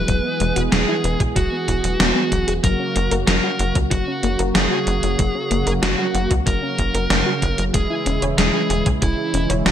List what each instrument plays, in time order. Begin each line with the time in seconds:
Already playing: analog synth pad E3 G#3 B3, lead electric guitar B4
0.08 analog synth bass E1, synth arpeggio sound F#3, analog synth pad G#4, kick, closed hi-hat
0.25 synth arpeggio sound B3
0.40 analog synth bass E1, synth arpeggio sound G#3, closed hi-hat
0.56 analog synth bass E1, synth arpeggio sound F#4, closed hi-hat
0.72 analog synth bass E1, synth arpeggio sound F#3, lead electric guitar G#4, snare, closed hi-hat
0.88 synth arpeggio sound E4
1.04 analog synth bass E1, synth arpeggio sound B4, closed hi-hat
1.20 analog synth bass B1, synth arpeggio sound F#3, kick, closed hi-hat
1.36 analog synth bass E1, synth arpeggio sound F#3, lead electric guitar F#4, kick, closed hi-hat
1.52 synth arpeggio sound B3
1.68 analog synth bass E1, synth arpeggio sound E4, kick, closed hi-hat
1.84 analog synth bass E1, synth arpeggio sound F#3, closed hi-hat
2.00 analog synth bass E1, synth arpeggio sound B3, snare, closed hi-hat
2.16 synth arpeggio sound B3
2.32 analog synth bass E1, synth arpeggio sound F#3, kick, closed hi-hat
2.48 analog synth bass E1, synth arpeggio sound G#4, closed hi-hat
2.64 analog synth bass F#1, analog synth pad C#3 F#3 A#3 F#4, synth arpeggio sound F#3, lead electric guitar A#4, kick, closed hi-hat
2.80 synth arpeggio sound C#4
2.96 analog synth bass F#1, synth arpeggio sound A#3, closed hi-hat
3.11 analog synth bass F#1, synth arpeggio sound A#4, closed hi-hat
3.27 analog synth bass F#1, synth arpeggio sound F#3, lead electric guitar A#4, snare, closed hi-hat
3.44 synth arpeggio sound F#4
3.59 analog synth bass F#1, synth arpeggio sound F#5, closed hi-hat
3.75 analog synth bass C#2, synth arpeggio sound F#3, kick, closed hi-hat
3.91 analog synth bass F#1, synth arpeggio sound F#3, lead electric guitar F#4, kick, closed hi-hat
4.08 synth arpeggio sound C#4
4.23 analog synth bass F#1, synth arpeggio sound A#3, closed hi-hat
4.39 analog synth bass F#1, synth arpeggio sound A#4, closed hi-hat
4.55 analog synth bass F#1, synth arpeggio sound F#3, lead electric guitar G#4, snare, closed hi-hat
4.71 synth arpeggio sound F#4
4.87 analog synth bass F#1, synth arpeggio sound F#5, closed hi-hat
5.03 analog synth bass F#1, synth arpeggio sound F#3, closed hi-hat
5.19 analog synth bass F#1, synth arpeggio sound F#3, kick, closed hi-hat
5.35 synth arpeggio sound C#4
5.51 analog synth bass F#1, synth arpeggio sound A#3, closed hi-hat
5.67 analog synth bass F#1, synth arpeggio sound A#4, closed hi-hat
5.82 analog synth bass F#1, synth arpeggio sound F#3, lead electric guitar F#4, snare, closed hi-hat
5.99 synth arpeggio sound F#4
6.14 analog synth bass F#1, synth arpeggio sound F#5, closed hi-hat
6.31 analog synth bass C#2, synth arpeggio sound F#3, kick, closed hi-hat
6.46 analog synth bass F#1, synth arpeggio sound F#3, lead electric guitar A#4, kick, closed hi-hat
6.63 synth arpeggio sound C#4
6.78 analog synth bass F#1, synth arpeggio sound A#3, kick, closed hi-hat
6.94 analog synth bass F#1, synth arpeggio sound A#4, closed hi-hat
7.10 analog synth bass F#1, synth arpeggio sound F#3, snare, closed hi-hat
7.26 synth arpeggio sound F#4
7.42 analog synth bass F#1, synth arpeggio sound F#5, kick, closed hi-hat
7.58 analog synth bass F#1, synth arpeggio sound F#3, closed hi-hat
7.74 analog synth bass E1, analog synth pad E3 G#3 E4, synth arpeggio sound G#3, lead electric guitar G#4, kick, closed hi-hat
7.90 synth arpeggio sound E4
8.06 analog synth bass E1, synth arpeggio sound C#4, closed hi-hat
8.22 analog synth bass E1, synth arpeggio sound C#5, closed hi-hat
8.38 analog synth bass E1, synth arpeggio sound G#3, lead electric guitar G#4, snare, closed hi-hat
8.54 synth arpeggio sound G#4
8.70 analog synth bass E1, synth arpeggio sound G#5, closed hi-hat
8.86 analog synth bass B1, synth arpeggio sound G#3, kick, closed hi-hat
9.02 analog synth bass E1, synth arpeggio sound G#3, lead electric guitar E4, kick, closed hi-hat
9.18 synth arpeggio sound E4
9.34 analog synth bass E1, synth arpeggio sound C#4, closed hi-hat
9.50 analog synth bass E1, synth arpeggio sound C#5, closed hi-hat
9.66 analog synth bass E1, synth arpeggio sound G#3, lead electric guitar F#4, snare, closed hi-hat